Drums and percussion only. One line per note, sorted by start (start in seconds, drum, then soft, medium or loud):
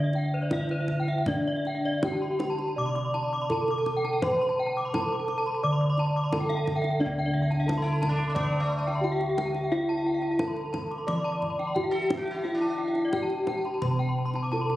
0.13 kendang slap soft
0.51 kendang slap soft
0.51 kendang high soft
0.51 kendang low soft
0.69 kendang slap soft
0.88 kendang slap soft
0.88 kendang low soft
1.07 kendang slap soft
1.26 kendang low medium
1.65 kendang slap soft
2.03 kendang slap soft
2.03 kendang high soft
2.03 kendang low soft
2.40 kendang slap soft
2.40 kendang high soft
2.59 kendang slap soft
2.96 kendang slap soft
3.14 kendang slap soft
3.50 kendang slap soft
3.50 kendang low soft
3.68 kendang slap soft
3.86 kendang slap soft
3.86 kendang low soft
4.05 kendang slap soft
4.22 kendang high soft
4.22 kendang low medium
4.94 kendang slap soft
4.94 kendang high soft
4.94 kendang low soft
5.28 kendang slap soft
5.98 kendang slap soft
6.33 kendang slap soft
6.33 kendang high soft
6.33 kendang low soft
6.50 kendang slap soft
6.67 kendang slap soft
6.67 kendang low soft
6.84 kendang slap soft
7.52 kendang slap soft
7.69 kendang high soft
7.69 kendang low soft
7.86 kendang slap soft
8.03 kendang high soft
8.03 kendang low soft
8.19 kendang slap soft
8.36 kendang low medium
8.88 kendang slap soft
9.21 kendang slap soft
9.38 kendang high soft
9.55 kendang slap soft
10.22 kendang slap soft
10.39 kendang high soft
10.39 kendang low soft
10.56 kendang slap soft
10.74 kendang high soft
10.74 kendang low soft
10.91 kendang slap soft
11.08 kendang low medium
11.42 kendang low soft
11.59 kendang slap soft
11.76 kendang low soft
11.93 kendang slap soft
12.10 kendang high soft
12.10 kendang low soft
12.28 kendang slap soft
12.95 kendang slap soft
13.13 kendang high soft
13.13 kendang low soft
13.30 kendang slap soft
13.47 kendang high soft
13.47 kendang low soft
13.65 kendang slap soft
13.82 kendang low medium
14.34 kendang slap soft
14.70 kendang slap soft